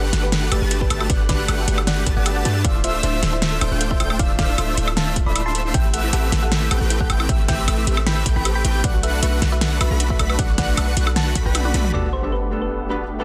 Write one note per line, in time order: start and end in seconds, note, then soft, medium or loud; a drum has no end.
0.00 0.11 G1 loud
0.00 0.11 A3 medium
0.00 0.11 D4 medium
0.00 0.11 G4 medium
0.00 0.10 A4 medium
0.00 0.11 B4 medium
0.00 0.11 F#5 loud
0.00 0.11 F#6 medium
0.13 0.50 G1 loud
0.13 0.49 A3 medium
0.13 0.49 D4 medium
0.13 0.16 F#4 medium
0.13 0.49 G4 medium
0.13 0.49 B4 medium
0.13 0.49 F#5 medium
0.13 0.49 F#6 medium
0.13 snare medium
0.13 closed hi-hat medium
0.23 0.26 G4 medium
0.23 0.40 G4 medium
0.23 0.40 B4 loud
0.32 0.37 A4 medium
0.32 snare loud
0.32 closed hi-hat medium
0.42 0.45 F#4 loud
0.52 0.60 G1 loud
0.52 0.59 A3 medium
0.52 0.59 D4 medium
0.52 0.54 G4 loud
0.52 0.59 G4 medium
0.52 0.69 G4 medium
0.52 0.59 B4 medium
0.52 0.69 B4 medium
0.52 0.59 A5 medium
0.52 0.59 A6 medium
0.52 closed hi-hat medium
0.52 high woodblock medium
0.62 0.88 G1 loud
0.62 0.88 A3 medium
0.62 0.88 D4 medium
0.62 0.88 G4 medium
0.62 0.68 A4 medium
0.62 0.88 B4 medium
0.62 0.88 A5 medium
0.62 0.88 A6 medium
0.71 0.74 F#4 medium
0.71 closed hi-hat medium
0.81 0.84 G4 medium
0.81 0.98 G4 medium
0.81 0.98 B4 medium
0.81 kick medium
0.90 1.08 G1 loud
0.90 1.07 A3 medium
0.90 1.07 D4 medium
0.90 1.07 G4 medium
0.90 0.95 A4 medium
0.90 1.07 B4 medium
0.90 1.07 A5 medium
0.90 1.08 A6 medium
0.90 closed hi-hat medium
0.90 high woodblock medium
1.00 1.03 F#4 loud
1.00 high woodblock medium
1.10 1.47 G1 loud
1.10 1.46 A3 loud
1.10 1.46 D4 medium
1.10 1.46 G4 medium
1.10 1.12 G4 loud
1.10 1.46 B4 medium
1.10 1.21 B4 medium
1.10 1.21 D5 medium
1.10 1.46 F#5 loud
1.10 1.46 F#6 loud
1.10 kick loud
1.10 closed hi-hat medium
1.20 1.26 A4 medium
1.29 1.32 F#4 medium
1.29 1.52 B4 medium
1.29 1.52 D5 loud
1.29 kick loud
1.29 snare medium
1.29 closed hi-hat medium
1.39 1.42 G4 medium
1.48 1.66 G1 loud
1.48 1.66 A3 medium
1.48 1.66 D4 medium
1.48 1.66 G4 medium
1.48 1.53 A4 medium
1.48 1.66 B4 medium
1.48 1.66 F#5 loud
1.48 1.66 F#6 medium
1.48 closed hi-hat medium
1.48 high woodblock medium
1.59 1.61 F#4 loud
1.68 2.05 G1 loud
1.68 2.04 A3 medium
1.68 2.04 D4 medium
1.68 2.04 G4 medium
1.68 1.71 G4 loud
1.68 2.04 B4 medium
1.68 2.04 F#5 medium
1.68 2.04 F#6 medium
1.68 closed hi-hat medium
1.78 1.84 A4 medium
1.78 high woodblock medium
1.87 1.90 F#4 medium
1.87 2.04 D5 medium
1.87 2.04 F#5 medium
1.87 snare loud
1.87 closed hi-hat medium
1.97 2.00 G4 medium
2.06 2.15 G1 loud
2.06 2.14 A3 medium
2.06 2.14 D4 medium
2.06 2.14 G4 medium
2.06 2.11 A4 medium
2.06 2.14 B4 medium
2.06 2.14 A5 medium
2.06 2.14 A6 medium
2.06 kick medium
2.06 closed hi-hat medium
2.17 2.43 G1 loud
2.17 2.43 A3 medium
2.17 2.43 D4 medium
2.17 2.19 F#4 loud
2.17 2.43 G4 medium
2.17 2.43 B4 medium
2.17 2.28 D5 medium
2.17 2.28 F#5 medium
2.17 2.43 A5 medium
2.17 2.43 A6 medium
2.26 2.29 G4 loud
2.26 closed hi-hat medium
2.26 high woodblock medium
2.36 2.42 A4 medium
2.36 2.53 D5 medium
2.36 2.53 F#5 medium
2.45 2.66 G2 loud
2.45 2.62 A3 medium
2.45 2.62 D4 medium
2.45 2.48 F#4 medium
2.45 2.62 G4 medium
2.45 2.62 B4 medium
2.45 2.62 A5 medium
2.45 2.62 A6 loud
2.45 closed hi-hat medium
2.55 2.58 G4 medium
2.64 3.01 D1 loud
2.64 3.01 A3 loud
2.64 3.01 D4 medium
2.64 3.01 F4 medium
2.64 2.69 A4 medium
2.64 3.01 C5 medium
2.64 2.76 D5 medium
2.64 3.01 E5 loud
2.64 2.76 F5 loud
2.64 3.01 E6 loud
2.64 kick loud
2.64 closed hi-hat medium
2.75 2.77 E4 loud
2.84 2.87 F4 loud
2.84 2.96 C5 medium
2.84 2.96 E5 medium
2.84 closed hi-hat medium
2.94 3.00 A4 medium
3.03 3.21 D1 loud
3.03 3.20 A3 medium
3.03 3.20 D4 medium
3.03 3.06 E4 medium
3.03 3.20 F4 medium
3.03 3.20 C5 medium
3.03 3.21 C5 medium
3.03 3.20 E5 loud
3.03 3.21 E5 loud
3.03 3.20 E6 loud
3.03 closed hi-hat medium
3.13 3.16 F4 medium
3.23 3.59 D1 loud
3.23 3.59 A3 medium
3.23 3.59 D4 medium
3.23 3.59 F4 medium
3.23 3.27 A4 medium
3.23 3.59 C5 medium
3.23 3.59 E5 medium
3.23 3.59 E6 medium
3.23 snare medium
3.23 closed hi-hat medium
3.33 3.35 E4 loud
3.33 3.50 C5 medium
3.33 3.50 E5 loud
3.42 3.45 F4 loud
3.42 snare loud
3.42 closed hi-hat medium
3.52 3.58 A4 medium
3.61 3.69 D1 loud
3.61 3.69 A3 medium
3.61 3.69 D4 medium
3.61 3.64 E4 medium
3.61 3.69 F4 medium
3.61 3.69 C5 medium
3.61 3.79 C5 medium
3.61 3.79 E5 medium
3.61 3.69 G5 medium
3.61 3.69 G6 medium
3.61 closed hi-hat medium
3.61 high woodblock medium
3.71 3.98 D1 loud
3.71 3.98 A3 medium
3.71 3.98 D4 medium
3.71 3.98 F4 medium
3.71 3.74 F4 medium
3.71 3.98 C5 medium
3.71 3.98 G5 medium
3.71 3.98 G6 medium
3.81 3.85 A4 medium
3.81 closed hi-hat medium
3.91 3.93 E4 loud
3.91 4.08 C5 medium
3.91 4.08 E5 loud
3.91 kick medium
4.00 4.18 D1 loud
4.00 4.17 A3 medium
4.00 4.17 D4 medium
4.00 4.17 F4 medium
4.00 4.03 F4 loud
4.00 4.17 C5 medium
4.00 4.17 G5 medium
4.00 4.17 G6 medium
4.00 closed hi-hat medium
4.00 high woodblock medium
4.10 4.16 A4 medium
4.10 high woodblock medium
4.19 4.56 D1 loud
4.19 4.56 A3 loud
4.19 4.56 D4 medium
4.19 4.22 E4 medium
4.19 4.56 F4 medium
4.19 4.56 C5 medium
4.19 4.31 D5 medium
4.19 4.56 E5 loud
4.19 4.31 F5 medium
4.19 4.56 E6 loud
4.19 kick loud
4.19 closed hi-hat medium
4.30 4.32 F4 medium
4.39 4.43 A4 medium
4.39 4.62 D5 medium
4.39 4.62 F5 loud
4.39 kick loud
4.39 snare medium
4.39 closed hi-hat medium
4.49 4.51 E4 loud
4.58 4.76 D1 loud
4.58 4.75 A3 medium
4.58 4.75 D4 medium
4.58 4.61 F4 loud
4.58 4.75 F4 medium
4.58 4.75 C5 medium
4.58 4.75 E5 loud
4.58 4.75 E6 loud
4.58 closed hi-hat medium
4.58 high woodblock medium
4.68 4.74 A4 medium
4.77 5.24 D1 loud
4.77 5.14 A3 medium
4.77 5.14 D4 medium
4.77 4.80 E4 medium
4.77 5.14 F4 medium
4.77 5.14 C5 medium
4.77 5.14 E5 medium
4.77 5.14 E6 medium
4.77 closed hi-hat medium
4.88 4.90 F4 medium
4.88 high woodblock medium
4.97 5.01 A4 medium
4.97 5.14 F5 medium
4.97 5.14 A5 medium
4.97 snare loud
4.97 closed hi-hat medium
5.07 5.09 E4 loud
5.16 5.19 F4 loud
5.16 kick medium
5.16 closed hi-hat medium
5.26 5.72 D1 loud
5.26 5.72 A3 medium
5.26 5.72 D4 medium
5.26 5.72 F4 medium
5.26 5.33 A4 medium
5.26 5.72 C5 medium
5.26 5.37 D5 medium
5.26 5.72 E5 medium
5.26 5.37 B5 medium
5.26 5.72 E6 medium
5.35 5.38 E4 medium
5.35 closed hi-hat medium
5.35 high woodblock medium
5.46 5.48 F4 medium
5.46 5.63 A5 medium
5.46 5.63 C6 medium
5.55 5.59 A4 medium
5.55 closed hi-hat medium
5.65 5.68 E4 loud
5.74 6.11 A1 loud
5.74 6.11 A3 loud
5.74 6.11 C4 medium
5.74 5.77 E4 medium
5.74 6.11 G4 medium
5.74 6.11 B4 medium
5.74 6.11 E5 loud
5.74 5.86 E5 medium
5.74 5.86 G5 loud
5.74 6.11 E6 loud
5.74 kick loud
5.74 closed hi-hat medium
5.84 5.87 G4 medium
5.94 6.05 A4 medium
5.94 5.98 A4 medium
5.94 6.05 F#5 medium
5.94 closed hi-hat medium
6.04 6.06 E4 loud
6.13 6.30 A1 loud
6.13 6.30 A3 medium
6.13 6.30 C4 medium
6.13 6.30 G4 medium
6.13 6.16 G4 loud
6.13 6.30 A4 medium
6.13 6.30 B4 medium
6.13 6.30 E5 loud
6.13 6.30 F#5 medium
6.13 6.30 E6 loud
6.13 closed hi-hat medium
6.23 6.29 A4 medium
6.32 6.69 A1 loud
6.32 6.69 A3 medium
6.32 6.69 C4 medium
6.32 6.35 E4 medium
6.32 6.69 G4 medium
6.32 6.69 B4 medium
6.32 6.69 E5 medium
6.32 6.69 E6 medium
6.32 snare medium
6.32 closed hi-hat medium
6.42 6.45 G4 medium
6.42 6.59 A4 medium
6.42 6.59 F#5 medium
6.52 6.56 A4 medium
6.52 snare loud
6.52 closed hi-hat medium
6.62 6.64 E4 loud
6.71 6.79 A1 loud
6.71 6.79 A3 medium
6.71 6.79 C4 medium
6.71 6.74 G4 loud
6.71 6.79 G4 medium
6.71 6.88 A4 medium
6.71 6.79 B4 medium
6.71 6.88 F#5 medium
6.71 6.79 G5 loud
6.71 6.79 G6 medium
6.71 closed hi-hat medium
6.71 high woodblock medium
6.81 7.08 A1 loud
6.81 7.08 A3 medium
6.81 7.08 C4 medium
6.81 7.07 G4 medium
6.81 6.87 A4 medium
6.81 7.07 B4 medium
6.81 7.07 G5 medium
6.81 7.08 G6 medium
6.90 6.93 E4 medium
6.90 closed hi-hat medium
7.00 7.03 G4 medium
7.00 7.17 A4 medium
7.00 7.17 F#5 medium
7.00 kick medium
7.10 7.27 A1 loud
7.10 7.27 A3 medium
7.10 7.27 C4 medium
7.10 7.27 G4 medium
7.10 7.14 A4 medium
7.10 7.27 B4 medium
7.10 7.27 G5 medium
7.10 7.27 G6 medium
7.10 closed hi-hat medium
7.10 high woodblock medium
7.20 7.22 E4 loud
7.20 high woodblock medium
7.29 7.66 A1 loud
7.29 7.66 A3 loud
7.29 7.66 C4 medium
7.29 7.32 G4 loud
7.29 7.66 G4 medium
7.29 7.66 B4 medium
7.29 7.66 E5 loud
7.29 7.41 E5 medium
7.29 7.41 G5 medium
7.29 7.66 E6 loud
7.29 kick loud
7.29 closed hi-hat medium
7.39 7.45 A4 medium
7.48 7.51 E4 medium
7.48 7.71 E5 medium
7.48 7.71 G5 loud
7.48 kick loud
7.48 snare medium
7.48 closed hi-hat medium
7.58 7.61 G4 medium
7.68 7.85 A1 loud
7.68 7.85 A3 medium
7.68 7.85 C4 medium
7.68 7.85 G4 medium
7.68 7.72 A4 medium
7.68 7.85 B4 medium
7.68 7.85 E5 loud
7.68 7.85 E6 loud
7.68 closed hi-hat medium
7.68 high woodblock medium
7.78 7.80 E4 loud
7.87 8.24 A1 loud
7.87 8.24 A3 medium
7.87 8.24 C4 medium
7.87 7.90 G4 loud
7.87 8.24 G4 medium
7.87 8.24 B4 medium
7.87 8.24 E5 medium
7.87 8.24 E6 medium
7.87 closed hi-hat medium
7.97 8.04 A4 medium
7.97 high woodblock medium
8.06 8.09 E4 medium
8.06 8.24 G5 medium
8.06 8.24 B5 medium
8.06 snare loud
8.06 closed hi-hat medium
8.17 8.19 G4 medium
8.26 8.34 A1 loud
8.26 8.34 A3 medium
8.26 8.34 C4 medium
8.26 8.34 G4 medium
8.26 8.30 A4 medium
8.26 8.34 B4 medium
8.26 8.34 G5 medium
8.26 8.34 G6 medium
8.26 kick medium
8.26 closed hi-hat medium
8.36 8.63 A1 medium
8.36 8.62 A3 medium
8.36 8.62 C4 medium
8.36 8.38 E4 loud
8.36 8.62 G4 medium
8.36 8.62 B4 medium
8.36 8.62 G5 medium
8.36 8.47 G5 medium
8.36 8.47 B5 medium
8.36 8.62 G6 medium
8.45 8.48 G4 loud
8.45 closed hi-hat medium
8.45 high woodblock medium
8.55 8.62 A4 medium
8.55 8.72 G5 medium
8.55 8.72 B5 medium
8.64 8.82 A1 loud
8.64 8.82 A3 medium
8.64 8.82 C4 medium
8.64 8.67 E4 medium
8.64 8.82 G4 medium
8.64 8.82 B4 medium
8.64 8.82 G5 medium
8.64 8.82 G6 medium
8.64 closed hi-hat medium
8.75 8.77 G4 medium
8.84 9.21 B1 loud
8.84 9.20 A3 loud
8.84 9.20 D4 medium
8.84 9.20 F#4 medium
8.84 8.88 B4 medium
8.84 9.20 B4 medium
8.84 8.96 D5 medium
8.84 8.96 F#5 loud
8.84 9.20 F#5 loud
8.84 9.20 F#6 loud
8.84 kick loud
8.84 closed hi-hat medium
8.94 8.97 F#4 loud
9.03 9.06 A4 loud
9.03 9.15 B4 medium
9.03 9.15 E5 medium
9.03 closed hi-hat medium
9.13 9.20 B4 medium
9.23 9.40 B1 loud
9.23 9.40 A3 medium
9.23 9.40 D4 medium
9.23 9.25 F#4 medium
9.23 9.40 F#4 medium
9.23 9.40 B4 medium
9.23 9.40 E5 medium
9.23 9.40 F#5 loud
9.23 9.40 F#6 loud
9.23 closed hi-hat medium
9.33 9.35 A4 medium
9.42 9.79 B1 loud
9.42 9.78 A3 medium
9.42 9.78 D4 medium
9.42 9.78 F#4 medium
9.42 9.46 B4 medium
9.42 9.78 B4 medium
9.42 9.78 F#5 medium
9.42 9.78 F#6 medium
9.42 snare medium
9.42 closed hi-hat medium
9.52 9.55 F#4 loud
9.52 9.69 B4 medium
9.52 9.69 E5 loud
9.61 9.64 A4 loud
9.61 snare loud
9.61 closed hi-hat medium
9.71 9.78 B4 medium
9.81 9.89 B1 loud
9.81 9.88 A3 medium
9.81 9.88 D4 medium
9.81 9.83 F#4 medium
9.81 9.88 F#4 medium
9.81 9.98 B4 medium
9.81 9.88 B4 medium
9.81 9.98 E5 medium
9.81 9.88 B5 medium
9.81 9.88 B6 medium
9.81 closed hi-hat medium
9.81 high woodblock medium
9.91 10.18 B1 loud
9.91 10.17 A3 medium
9.91 10.17 D4 medium
9.91 10.17 F#4 medium
9.91 9.93 A4 medium
9.91 10.17 B4 medium
9.91 10.17 B5 medium
9.91 10.17 B6 medium
10.00 10.05 B4 medium
10.00 closed hi-hat medium
10.10 10.13 F#4 loud
10.10 10.27 B4 medium
10.10 10.27 E5 medium
10.10 kick medium
10.19 10.37 B1 loud
10.19 10.37 A3 medium
10.19 10.37 D4 medium
10.19 10.37 F#4 medium
10.19 10.22 A4 loud
10.19 10.37 B4 medium
10.19 10.37 B5 medium
10.19 10.37 B6 medium
10.19 closed hi-hat medium
10.19 high woodblock medium
10.29 10.36 B4 medium
10.29 high woodblock medium
10.39 10.76 B1 loud
10.39 10.75 A3 loud
10.39 10.75 D4 medium
10.39 10.41 F#4 medium
10.39 10.75 F#4 medium
10.39 10.75 B4 medium
10.39 10.51 D5 medium
10.39 10.51 F#5 loud
10.39 10.75 F#5 loud
10.39 10.75 F#6 loud
10.39 kick loud
10.39 closed hi-hat medium
10.49 10.51 A4 medium
10.58 10.63 B4 medium
10.58 10.81 D5 medium
10.58 10.81 F#5 medium
10.58 kick loud
10.58 snare medium
10.58 closed hi-hat medium
10.68 10.71 F#4 loud
10.77 10.95 B1 loud
10.77 10.95 A3 medium
10.77 10.95 D4 medium
10.77 10.95 F#4 medium
10.77 10.80 A4 loud
10.77 10.95 B4 medium
10.77 10.95 F#5 loud
10.77 10.95 F#6 loud
10.77 closed hi-hat medium
10.77 high woodblock medium
10.88 10.94 B4 medium
10.97 11.34 B1 loud
10.97 11.33 A3 medium
10.97 11.33 D4 medium
10.97 11.00 F#4 medium
10.97 11.33 F#4 medium
10.97 11.33 B4 medium
10.97 11.33 F#5 medium
10.97 11.33 F#6 medium
10.97 closed hi-hat medium
11.07 11.09 A4 medium
11.07 high woodblock medium
11.16 11.21 B4 medium
11.16 11.33 F#5 medium
11.16 11.33 A5 medium
11.16 snare loud
11.16 closed hi-hat medium
11.26 11.29 F#4 loud
11.35 11.44 B1 loud
11.35 11.43 A3 medium
11.35 11.43 D4 medium
11.35 11.43 F#4 medium
11.35 11.38 A4 loud
11.35 11.43 B4 medium
11.35 11.43 B5 medium
11.35 11.43 B6 loud
11.35 kick medium
11.35 closed hi-hat medium
11.46 11.72 B1 loud
11.46 11.72 A3 medium
11.46 11.72 D4 medium
11.46 11.72 F#4 medium
11.46 11.57 B4 medium
11.46 11.72 B4 medium
11.46 11.52 B4 medium
11.46 11.57 G5 medium
11.46 11.72 B5 medium
11.46 11.72 B6 medium
11.55 11.58 F#4 medium
11.55 closed hi-hat medium
11.55 high tom medium
11.55 high woodblock medium
11.65 11.68 A4 medium
11.65 11.82 D5 medium
11.65 11.82 F#5 loud
11.65 high tom medium
11.74 11.92 B1 loud
11.74 11.91 A3 medium
11.74 11.91 D4 medium
11.74 11.91 F#4 medium
11.74 11.79 B4 medium
11.74 11.91 B4 medium
11.74 11.91 B5 medium
11.74 11.91 B6 medium
11.74 closed hi-hat medium
11.74 mid tom medium
11.84 11.87 F#4 loud
11.84 mid tom medium
11.93 13.24 G1 medium
11.93 12.06 G3 medium
11.93 13.24 A3 medium
11.93 12.06 B3 medium
11.93 12.06 D4 medium
11.93 13.24 D4 medium
11.93 12.06 F#4 medium
11.93 13.24 G4 medium
11.93 12.07 A4 loud
11.93 13.24 B4 medium
11.93 12.05 D5 loud
11.93 13.24 F#5 medium
11.93 sub drop medium
12.13 12.25 C5 medium
12.22 12.30 G3 medium
12.22 12.30 B3 medium
12.22 12.30 D4 medium
12.22 12.31 F#4 medium
12.22 12.31 A4 medium
12.32 12.49 B4 medium
12.51 12.88 G3 medium
12.51 12.88 B3 medium
12.51 12.88 D4 medium
12.51 12.89 A4 medium
12.51 12.88 F#5 medium
12.62 12.79 B4 medium
12.89 13.03 G3 medium
12.89 13.03 B3 medium
12.89 13.03 D4 medium
12.89 13.03 F#4 medium
12.89 13.08 B4 medium
12.89 13.04 B4 loud
13.19 13.24 G3 medium
13.19 13.24 B3 medium
13.19 13.24 D4 medium
13.19 13.24 F#4 medium
13.19 13.24 A4 loud
13.19 13.24 B4 medium